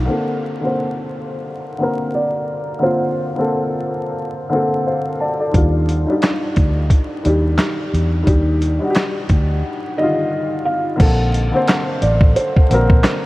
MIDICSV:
0, 0, Header, 1, 5, 480
1, 0, Start_track
1, 0, Tempo, 681818
1, 64, Time_signature, 4, 2, 24, 8
1, 9334, End_track
2, 0, Start_track
2, 0, Title_t, "Felt piano"
2, 0, Program_c, 0, 0
2, 1512, Note_on_c, 0, 74, 98
2, 1960, Note_off_c, 0, 74, 0
2, 1991, Note_on_c, 0, 72, 94
2, 3640, Note_off_c, 0, 72, 0
2, 7026, Note_on_c, 0, 75, 104
2, 7500, Note_on_c, 0, 77, 87
2, 7520, Note_off_c, 0, 75, 0
2, 8461, Note_on_c, 0, 74, 93
2, 8491, Note_off_c, 0, 77, 0
2, 8686, Note_off_c, 0, 74, 0
2, 8702, Note_on_c, 0, 72, 92
2, 9334, Note_off_c, 0, 72, 0
2, 9334, End_track
3, 0, Start_track
3, 0, Title_t, "Upright piano"
3, 0, Program_c, 1, 0
3, 0, Control_c, 1, 64, 127
3, 0, Note_on_c, 1, 51, 85
3, 0, Note_on_c, 1, 55, 71
3, 0, Note_on_c, 1, 62, 67
3, 0, Note_on_c, 1, 65, 94
3, 39, Note_on_c, 1, 50, 74
3, 52, Note_on_c, 1, 58, 69
3, 63, Note_on_c, 1, 60, 62
3, 74, Control_c, 1, 64, 0
3, 75, Note_off_c, 1, 65, 0
3, 75, Note_on_c, 1, 69, 69
3, 76, Note_off_c, 1, 62, 0
3, 77, Note_off_c, 1, 55, 0
3, 78, Note_off_c, 1, 51, 0
3, 178, Control_c, 1, 64, 127
3, 383, Note_off_c, 1, 50, 0
3, 390, Note_off_c, 1, 58, 0
3, 395, Note_off_c, 1, 60, 0
3, 401, Note_off_c, 1, 69, 0
3, 429, Note_on_c, 1, 50, 70
3, 440, Note_on_c, 1, 58, 65
3, 452, Note_on_c, 1, 60, 64
3, 463, Note_on_c, 1, 72, 69
3, 1176, Note_off_c, 1, 50, 0
3, 1181, Note_off_c, 1, 58, 0
3, 1187, Note_off_c, 1, 60, 0
3, 1193, Note_off_c, 1, 72, 0
3, 1254, Note_on_c, 1, 50, 74
3, 1267, Note_on_c, 1, 58, 70
3, 1279, Note_on_c, 1, 60, 68
3, 1290, Note_on_c, 1, 70, 89
3, 1909, Note_off_c, 1, 50, 0
3, 1916, Note_off_c, 1, 58, 0
3, 1922, Note_off_c, 1, 60, 0
3, 1928, Note_off_c, 1, 70, 0
3, 1963, Note_on_c, 1, 50, 82
3, 1976, Note_on_c, 1, 58, 63
3, 1989, Note_on_c, 1, 60, 66
3, 1997, Note_on_c, 1, 65, 88
3, 2305, Note_off_c, 1, 50, 0
3, 2312, Note_off_c, 1, 58, 0
3, 2318, Note_off_c, 1, 60, 0
3, 2322, Note_off_c, 1, 65, 0
3, 2361, Note_on_c, 1, 50, 74
3, 2373, Note_on_c, 1, 58, 65
3, 2383, Note_on_c, 1, 60, 67
3, 2397, Note_on_c, 1, 69, 85
3, 3102, Note_off_c, 1, 50, 0
3, 3107, Note_off_c, 1, 58, 0
3, 3113, Note_off_c, 1, 60, 0
3, 3119, Note_off_c, 1, 69, 0
3, 3165, Note_on_c, 1, 50, 84
3, 3177, Note_on_c, 1, 58, 72
3, 3187, Note_on_c, 1, 60, 73
3, 3201, Note_on_c, 1, 69, 81
3, 3423, Note_on_c, 1, 77, 61
3, 3426, Note_on_c, 1, 72, 56
3, 3433, Note_off_c, 1, 69, 0
3, 3651, Note_off_c, 1, 77, 0
3, 3653, Note_off_c, 1, 72, 0
3, 3662, Note_on_c, 1, 81, 62
3, 3666, Note_on_c, 1, 74, 58
3, 3790, Note_off_c, 1, 74, 0
3, 3796, Note_off_c, 1, 81, 0
3, 3801, Note_on_c, 1, 74, 67
3, 3805, Note_on_c, 1, 69, 51
3, 3825, Note_off_c, 1, 50, 0
3, 3831, Note_off_c, 1, 58, 0
3, 3836, Note_off_c, 1, 60, 0
3, 3881, Note_on_c, 1, 51, 68
3, 3893, Note_on_c, 1, 55, 68
3, 3905, Note_on_c, 1, 62, 65
3, 3912, Control_c, 1, 64, 0
3, 3914, Note_on_c, 1, 65, 77
3, 4030, Note_off_c, 1, 74, 0
3, 4033, Note_off_c, 1, 69, 0
3, 4048, Control_c, 1, 64, 127
3, 4224, Note_off_c, 1, 51, 0
3, 4230, Note_off_c, 1, 55, 0
3, 4236, Note_off_c, 1, 62, 0
3, 4241, Note_off_c, 1, 65, 0
3, 4267, Note_on_c, 1, 63, 70
3, 4281, Note_on_c, 1, 55, 79
3, 4291, Note_on_c, 1, 62, 78
3, 4303, Note_on_c, 1, 67, 71
3, 5015, Note_off_c, 1, 63, 0
3, 5022, Note_off_c, 1, 55, 0
3, 5026, Note_off_c, 1, 62, 0
3, 5033, Note_off_c, 1, 67, 0
3, 5088, Note_on_c, 1, 51, 74
3, 5099, Note_on_c, 1, 55, 78
3, 5112, Note_on_c, 1, 62, 72
3, 5123, Note_on_c, 1, 67, 76
3, 5747, Note_off_c, 1, 51, 0
3, 5752, Note_off_c, 1, 55, 0
3, 5759, Note_off_c, 1, 62, 0
3, 5764, Note_off_c, 1, 67, 0
3, 5795, Note_on_c, 1, 51, 90
3, 5807, Note_on_c, 1, 55, 67
3, 5819, Note_on_c, 1, 62, 68
3, 5829, Note_on_c, 1, 67, 86
3, 6141, Note_off_c, 1, 51, 0
3, 6147, Note_off_c, 1, 55, 0
3, 6153, Note_off_c, 1, 62, 0
3, 6158, Note_off_c, 1, 67, 0
3, 6187, Note_on_c, 1, 63, 70
3, 6198, Note_on_c, 1, 55, 76
3, 6209, Note_on_c, 1, 62, 64
3, 6221, Note_on_c, 1, 66, 74
3, 6251, Note_off_c, 1, 66, 0
3, 6268, Note_on_c, 1, 67, 87
3, 6934, Note_off_c, 1, 63, 0
3, 6940, Note_off_c, 1, 55, 0
3, 6946, Note_off_c, 1, 62, 0
3, 6975, Note_off_c, 1, 67, 0
3, 7022, Note_on_c, 1, 51, 76
3, 7033, Note_on_c, 1, 55, 67
3, 7046, Note_on_c, 1, 50, 65
3, 7059, Note_on_c, 1, 65, 86
3, 7674, Note_off_c, 1, 51, 0
3, 7679, Note_off_c, 1, 55, 0
3, 7686, Note_off_c, 1, 50, 0
3, 7692, Note_off_c, 1, 65, 0
3, 7716, Note_on_c, 1, 50, 81
3, 7728, Note_on_c, 1, 58, 75
3, 7739, Note_on_c, 1, 60, 63
3, 7752, Note_on_c, 1, 69, 93
3, 7754, Control_c, 1, 64, 0
3, 7866, Control_c, 1, 64, 127
3, 8062, Note_off_c, 1, 50, 0
3, 8067, Note_off_c, 1, 58, 0
3, 8073, Note_off_c, 1, 60, 0
3, 8079, Note_off_c, 1, 69, 0
3, 8107, Note_on_c, 1, 50, 83
3, 8118, Note_on_c, 1, 58, 67
3, 8128, Note_on_c, 1, 60, 71
3, 8140, Note_on_c, 1, 72, 85
3, 8854, Note_off_c, 1, 50, 0
3, 8860, Note_off_c, 1, 58, 0
3, 8865, Note_off_c, 1, 60, 0
3, 8871, Note_off_c, 1, 72, 0
3, 8934, Note_on_c, 1, 50, 79
3, 8947, Note_on_c, 1, 58, 80
3, 8958, Note_on_c, 1, 60, 75
3, 8970, Note_on_c, 1, 70, 98
3, 9334, Note_off_c, 1, 50, 0
3, 9334, Note_off_c, 1, 58, 0
3, 9334, Note_off_c, 1, 60, 0
3, 9334, Note_off_c, 1, 70, 0
3, 9334, End_track
4, 0, Start_track
4, 0, Title_t, "Fingered electric bass"
4, 0, Program_c, 2, 33
4, 3904, Note_on_c, 2, 39, 93
4, 4260, Note_off_c, 2, 39, 0
4, 4626, Note_on_c, 2, 38, 81
4, 4850, Note_off_c, 2, 38, 0
4, 5109, Note_on_c, 2, 39, 85
4, 5331, Note_off_c, 2, 39, 0
4, 5587, Note_on_c, 2, 40, 75
4, 5810, Note_off_c, 2, 40, 0
4, 5824, Note_on_c, 2, 39, 80
4, 6180, Note_off_c, 2, 39, 0
4, 6546, Note_on_c, 2, 38, 78
4, 6770, Note_off_c, 2, 38, 0
4, 7745, Note_on_c, 2, 34, 104
4, 8100, Note_off_c, 2, 34, 0
4, 8466, Note_on_c, 2, 33, 104
4, 8690, Note_off_c, 2, 33, 0
4, 8947, Note_on_c, 2, 34, 89
4, 9171, Note_off_c, 2, 34, 0
4, 9334, End_track
5, 0, Start_track
5, 0, Title_t, "Drums"
5, 3902, Note_on_c, 9, 36, 93
5, 3903, Note_on_c, 9, 42, 67
5, 3973, Note_off_c, 9, 36, 0
5, 3973, Note_off_c, 9, 42, 0
5, 4146, Note_on_c, 9, 42, 59
5, 4216, Note_off_c, 9, 42, 0
5, 4378, Note_on_c, 9, 42, 68
5, 4387, Note_on_c, 9, 39, 83
5, 4390, Note_on_c, 9, 38, 100
5, 4449, Note_off_c, 9, 42, 0
5, 4457, Note_off_c, 9, 39, 0
5, 4461, Note_off_c, 9, 38, 0
5, 4619, Note_on_c, 9, 42, 52
5, 4624, Note_on_c, 9, 36, 87
5, 4689, Note_off_c, 9, 42, 0
5, 4694, Note_off_c, 9, 36, 0
5, 4857, Note_on_c, 9, 36, 78
5, 4860, Note_on_c, 9, 42, 75
5, 4928, Note_off_c, 9, 36, 0
5, 4931, Note_off_c, 9, 42, 0
5, 5104, Note_on_c, 9, 42, 53
5, 5174, Note_off_c, 9, 42, 0
5, 5338, Note_on_c, 9, 39, 80
5, 5341, Note_on_c, 9, 38, 98
5, 5348, Note_on_c, 9, 42, 69
5, 5408, Note_off_c, 9, 39, 0
5, 5412, Note_off_c, 9, 38, 0
5, 5418, Note_off_c, 9, 42, 0
5, 5593, Note_on_c, 9, 42, 57
5, 5664, Note_off_c, 9, 42, 0
5, 5822, Note_on_c, 9, 36, 89
5, 5822, Note_on_c, 9, 42, 67
5, 5892, Note_off_c, 9, 42, 0
5, 5893, Note_off_c, 9, 36, 0
5, 6067, Note_on_c, 9, 42, 64
5, 6137, Note_off_c, 9, 42, 0
5, 6298, Note_on_c, 9, 42, 67
5, 6307, Note_on_c, 9, 39, 88
5, 6310, Note_on_c, 9, 38, 106
5, 6369, Note_off_c, 9, 42, 0
5, 6377, Note_off_c, 9, 39, 0
5, 6381, Note_off_c, 9, 38, 0
5, 6541, Note_on_c, 9, 42, 52
5, 6545, Note_on_c, 9, 36, 88
5, 6612, Note_off_c, 9, 42, 0
5, 6615, Note_off_c, 9, 36, 0
5, 7743, Note_on_c, 9, 36, 105
5, 7743, Note_on_c, 9, 49, 88
5, 7744, Note_on_c, 9, 42, 71
5, 7813, Note_off_c, 9, 49, 0
5, 7814, Note_off_c, 9, 36, 0
5, 7814, Note_off_c, 9, 42, 0
5, 7986, Note_on_c, 9, 42, 67
5, 8056, Note_off_c, 9, 42, 0
5, 8219, Note_on_c, 9, 42, 63
5, 8228, Note_on_c, 9, 39, 89
5, 8231, Note_on_c, 9, 38, 112
5, 8289, Note_off_c, 9, 42, 0
5, 8298, Note_off_c, 9, 39, 0
5, 8301, Note_off_c, 9, 38, 0
5, 8461, Note_on_c, 9, 42, 66
5, 8532, Note_off_c, 9, 42, 0
5, 8594, Note_on_c, 9, 36, 100
5, 8664, Note_off_c, 9, 36, 0
5, 8702, Note_on_c, 9, 42, 83
5, 8773, Note_off_c, 9, 42, 0
5, 8845, Note_on_c, 9, 36, 87
5, 8916, Note_off_c, 9, 36, 0
5, 8947, Note_on_c, 9, 42, 63
5, 9017, Note_off_c, 9, 42, 0
5, 9080, Note_on_c, 9, 36, 94
5, 9150, Note_off_c, 9, 36, 0
5, 9178, Note_on_c, 9, 39, 91
5, 9182, Note_on_c, 9, 38, 109
5, 9188, Note_on_c, 9, 42, 88
5, 9249, Note_off_c, 9, 39, 0
5, 9252, Note_off_c, 9, 38, 0
5, 9259, Note_off_c, 9, 42, 0
5, 9334, End_track
0, 0, End_of_file